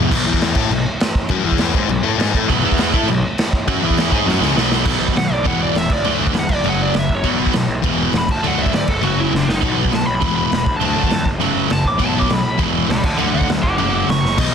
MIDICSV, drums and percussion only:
0, 0, Header, 1, 2, 480
1, 0, Start_track
1, 0, Tempo, 297177
1, 181, Time_signature, 4, 2, 24, 8
1, 23495, End_track
2, 0, Start_track
2, 0, Title_t, "Drums"
2, 186, Note_on_c, 9, 36, 122
2, 191, Note_on_c, 9, 49, 127
2, 191, Note_on_c, 9, 57, 67
2, 347, Note_off_c, 9, 36, 0
2, 352, Note_off_c, 9, 49, 0
2, 352, Note_off_c, 9, 57, 0
2, 544, Note_on_c, 9, 36, 84
2, 663, Note_on_c, 9, 57, 61
2, 681, Note_on_c, 9, 38, 110
2, 705, Note_off_c, 9, 36, 0
2, 825, Note_off_c, 9, 57, 0
2, 842, Note_off_c, 9, 38, 0
2, 885, Note_on_c, 9, 57, 97
2, 898, Note_on_c, 9, 36, 101
2, 1047, Note_off_c, 9, 57, 0
2, 1060, Note_off_c, 9, 36, 0
2, 1151, Note_on_c, 9, 57, 64
2, 1312, Note_off_c, 9, 57, 0
2, 1620, Note_on_c, 9, 57, 68
2, 1637, Note_on_c, 9, 38, 121
2, 1781, Note_off_c, 9, 57, 0
2, 1799, Note_off_c, 9, 38, 0
2, 1859, Note_on_c, 9, 36, 89
2, 2021, Note_off_c, 9, 36, 0
2, 2077, Note_on_c, 9, 57, 66
2, 2094, Note_on_c, 9, 36, 100
2, 2239, Note_off_c, 9, 57, 0
2, 2256, Note_off_c, 9, 36, 0
2, 2452, Note_on_c, 9, 36, 79
2, 2552, Note_on_c, 9, 57, 68
2, 2569, Note_on_c, 9, 38, 106
2, 2614, Note_off_c, 9, 36, 0
2, 2713, Note_off_c, 9, 57, 0
2, 2731, Note_off_c, 9, 38, 0
2, 2814, Note_on_c, 9, 36, 97
2, 2976, Note_off_c, 9, 36, 0
2, 3053, Note_on_c, 9, 57, 63
2, 3214, Note_off_c, 9, 57, 0
2, 3549, Note_on_c, 9, 57, 65
2, 3567, Note_on_c, 9, 38, 109
2, 3711, Note_off_c, 9, 57, 0
2, 3729, Note_off_c, 9, 38, 0
2, 3787, Note_on_c, 9, 36, 89
2, 3948, Note_off_c, 9, 36, 0
2, 4029, Note_on_c, 9, 36, 110
2, 4035, Note_on_c, 9, 57, 69
2, 4191, Note_off_c, 9, 36, 0
2, 4197, Note_off_c, 9, 57, 0
2, 4389, Note_on_c, 9, 36, 79
2, 4489, Note_on_c, 9, 57, 67
2, 4507, Note_on_c, 9, 38, 115
2, 4550, Note_off_c, 9, 36, 0
2, 4650, Note_off_c, 9, 57, 0
2, 4668, Note_off_c, 9, 38, 0
2, 4744, Note_on_c, 9, 36, 101
2, 4906, Note_off_c, 9, 36, 0
2, 4978, Note_on_c, 9, 57, 65
2, 5139, Note_off_c, 9, 57, 0
2, 5459, Note_on_c, 9, 57, 64
2, 5477, Note_on_c, 9, 38, 106
2, 5621, Note_off_c, 9, 57, 0
2, 5638, Note_off_c, 9, 38, 0
2, 5701, Note_on_c, 9, 36, 83
2, 5862, Note_off_c, 9, 36, 0
2, 5938, Note_on_c, 9, 57, 68
2, 5942, Note_on_c, 9, 36, 104
2, 6100, Note_off_c, 9, 57, 0
2, 6104, Note_off_c, 9, 36, 0
2, 6303, Note_on_c, 9, 36, 86
2, 6417, Note_on_c, 9, 57, 66
2, 6435, Note_on_c, 9, 38, 108
2, 6464, Note_off_c, 9, 36, 0
2, 6579, Note_off_c, 9, 57, 0
2, 6596, Note_off_c, 9, 38, 0
2, 6654, Note_on_c, 9, 36, 102
2, 6816, Note_off_c, 9, 36, 0
2, 6918, Note_on_c, 9, 38, 66
2, 7080, Note_off_c, 9, 38, 0
2, 7146, Note_on_c, 9, 38, 72
2, 7307, Note_off_c, 9, 38, 0
2, 7386, Note_on_c, 9, 38, 86
2, 7548, Note_off_c, 9, 38, 0
2, 7618, Note_on_c, 9, 38, 90
2, 7779, Note_off_c, 9, 38, 0
2, 7840, Note_on_c, 9, 49, 120
2, 7840, Note_on_c, 9, 57, 63
2, 7844, Note_on_c, 9, 36, 108
2, 8001, Note_off_c, 9, 49, 0
2, 8001, Note_off_c, 9, 57, 0
2, 8005, Note_off_c, 9, 36, 0
2, 8207, Note_on_c, 9, 36, 75
2, 8336, Note_on_c, 9, 57, 57
2, 8354, Note_on_c, 9, 38, 104
2, 8369, Note_off_c, 9, 36, 0
2, 8498, Note_off_c, 9, 57, 0
2, 8515, Note_off_c, 9, 38, 0
2, 8813, Note_on_c, 9, 36, 104
2, 8820, Note_on_c, 9, 57, 51
2, 8974, Note_off_c, 9, 36, 0
2, 8981, Note_off_c, 9, 57, 0
2, 9289, Note_on_c, 9, 57, 56
2, 9307, Note_on_c, 9, 38, 108
2, 9451, Note_off_c, 9, 57, 0
2, 9469, Note_off_c, 9, 38, 0
2, 9524, Note_on_c, 9, 57, 91
2, 9528, Note_on_c, 9, 36, 95
2, 9685, Note_off_c, 9, 57, 0
2, 9690, Note_off_c, 9, 36, 0
2, 9761, Note_on_c, 9, 57, 64
2, 9923, Note_off_c, 9, 57, 0
2, 10125, Note_on_c, 9, 36, 88
2, 10237, Note_on_c, 9, 57, 61
2, 10255, Note_on_c, 9, 38, 113
2, 10287, Note_off_c, 9, 36, 0
2, 10399, Note_off_c, 9, 57, 0
2, 10416, Note_off_c, 9, 38, 0
2, 10480, Note_on_c, 9, 57, 85
2, 10487, Note_on_c, 9, 36, 92
2, 10642, Note_off_c, 9, 57, 0
2, 10649, Note_off_c, 9, 36, 0
2, 10727, Note_on_c, 9, 57, 63
2, 10888, Note_off_c, 9, 57, 0
2, 11204, Note_on_c, 9, 57, 57
2, 11222, Note_on_c, 9, 38, 114
2, 11366, Note_off_c, 9, 57, 0
2, 11384, Note_off_c, 9, 38, 0
2, 11458, Note_on_c, 9, 36, 83
2, 11619, Note_off_c, 9, 36, 0
2, 11688, Note_on_c, 9, 57, 59
2, 11693, Note_on_c, 9, 36, 105
2, 11849, Note_off_c, 9, 57, 0
2, 11855, Note_off_c, 9, 36, 0
2, 12056, Note_on_c, 9, 36, 81
2, 12161, Note_on_c, 9, 57, 57
2, 12179, Note_on_c, 9, 38, 107
2, 12217, Note_off_c, 9, 36, 0
2, 12322, Note_off_c, 9, 57, 0
2, 12340, Note_off_c, 9, 38, 0
2, 12653, Note_on_c, 9, 57, 58
2, 12660, Note_on_c, 9, 36, 114
2, 12815, Note_off_c, 9, 57, 0
2, 12821, Note_off_c, 9, 36, 0
2, 13129, Note_on_c, 9, 57, 52
2, 13147, Note_on_c, 9, 38, 101
2, 13290, Note_off_c, 9, 57, 0
2, 13308, Note_off_c, 9, 38, 0
2, 13385, Note_on_c, 9, 36, 97
2, 13388, Note_on_c, 9, 57, 86
2, 13546, Note_off_c, 9, 36, 0
2, 13550, Note_off_c, 9, 57, 0
2, 13630, Note_on_c, 9, 57, 61
2, 13792, Note_off_c, 9, 57, 0
2, 13985, Note_on_c, 9, 36, 80
2, 14100, Note_on_c, 9, 57, 63
2, 14117, Note_on_c, 9, 38, 108
2, 14147, Note_off_c, 9, 36, 0
2, 14261, Note_off_c, 9, 57, 0
2, 14279, Note_off_c, 9, 38, 0
2, 14335, Note_on_c, 9, 57, 85
2, 14344, Note_on_c, 9, 36, 93
2, 14497, Note_off_c, 9, 57, 0
2, 14505, Note_off_c, 9, 36, 0
2, 14580, Note_on_c, 9, 57, 64
2, 14741, Note_off_c, 9, 57, 0
2, 15094, Note_on_c, 9, 38, 59
2, 15255, Note_off_c, 9, 38, 0
2, 15326, Note_on_c, 9, 38, 83
2, 15488, Note_off_c, 9, 38, 0
2, 15548, Note_on_c, 9, 36, 112
2, 15550, Note_on_c, 9, 57, 60
2, 15709, Note_off_c, 9, 36, 0
2, 15711, Note_off_c, 9, 57, 0
2, 15908, Note_on_c, 9, 36, 88
2, 16027, Note_on_c, 9, 57, 58
2, 16045, Note_on_c, 9, 38, 110
2, 16069, Note_off_c, 9, 36, 0
2, 16189, Note_off_c, 9, 57, 0
2, 16206, Note_off_c, 9, 38, 0
2, 16501, Note_on_c, 9, 57, 58
2, 16508, Note_on_c, 9, 36, 112
2, 16662, Note_off_c, 9, 57, 0
2, 16669, Note_off_c, 9, 36, 0
2, 16991, Note_on_c, 9, 57, 56
2, 17009, Note_on_c, 9, 38, 104
2, 17152, Note_off_c, 9, 57, 0
2, 17170, Note_off_c, 9, 38, 0
2, 17224, Note_on_c, 9, 36, 108
2, 17386, Note_off_c, 9, 36, 0
2, 17461, Note_on_c, 9, 57, 61
2, 17622, Note_off_c, 9, 57, 0
2, 17821, Note_on_c, 9, 36, 81
2, 17934, Note_on_c, 9, 57, 53
2, 17951, Note_on_c, 9, 38, 108
2, 17983, Note_off_c, 9, 36, 0
2, 18095, Note_off_c, 9, 57, 0
2, 18113, Note_off_c, 9, 38, 0
2, 18180, Note_on_c, 9, 36, 88
2, 18342, Note_off_c, 9, 36, 0
2, 18432, Note_on_c, 9, 57, 58
2, 18593, Note_off_c, 9, 57, 0
2, 18897, Note_on_c, 9, 57, 59
2, 18915, Note_on_c, 9, 38, 118
2, 19058, Note_off_c, 9, 57, 0
2, 19076, Note_off_c, 9, 38, 0
2, 19136, Note_on_c, 9, 36, 83
2, 19297, Note_off_c, 9, 36, 0
2, 19376, Note_on_c, 9, 36, 100
2, 19377, Note_on_c, 9, 57, 68
2, 19538, Note_off_c, 9, 36, 0
2, 19538, Note_off_c, 9, 57, 0
2, 19735, Note_on_c, 9, 36, 77
2, 19860, Note_on_c, 9, 57, 59
2, 19878, Note_on_c, 9, 38, 116
2, 19897, Note_off_c, 9, 36, 0
2, 20021, Note_off_c, 9, 57, 0
2, 20039, Note_off_c, 9, 38, 0
2, 20338, Note_on_c, 9, 36, 117
2, 20345, Note_on_c, 9, 57, 61
2, 20500, Note_off_c, 9, 36, 0
2, 20506, Note_off_c, 9, 57, 0
2, 20837, Note_on_c, 9, 57, 50
2, 20855, Note_on_c, 9, 38, 116
2, 20999, Note_off_c, 9, 57, 0
2, 21016, Note_off_c, 9, 38, 0
2, 21055, Note_on_c, 9, 57, 100
2, 21058, Note_on_c, 9, 36, 98
2, 21217, Note_off_c, 9, 57, 0
2, 21219, Note_off_c, 9, 36, 0
2, 21297, Note_on_c, 9, 57, 61
2, 21458, Note_off_c, 9, 57, 0
2, 21659, Note_on_c, 9, 36, 81
2, 21787, Note_on_c, 9, 57, 57
2, 21805, Note_on_c, 9, 38, 108
2, 21821, Note_off_c, 9, 36, 0
2, 21949, Note_off_c, 9, 57, 0
2, 21966, Note_off_c, 9, 38, 0
2, 22023, Note_on_c, 9, 36, 90
2, 22184, Note_off_c, 9, 36, 0
2, 22260, Note_on_c, 9, 57, 56
2, 22421, Note_off_c, 9, 57, 0
2, 22759, Note_on_c, 9, 57, 54
2, 22777, Note_on_c, 9, 38, 101
2, 22920, Note_off_c, 9, 57, 0
2, 22938, Note_off_c, 9, 38, 0
2, 23018, Note_on_c, 9, 38, 59
2, 23179, Note_off_c, 9, 38, 0
2, 23230, Note_on_c, 9, 36, 127
2, 23230, Note_on_c, 9, 49, 127
2, 23391, Note_off_c, 9, 36, 0
2, 23392, Note_off_c, 9, 49, 0
2, 23495, End_track
0, 0, End_of_file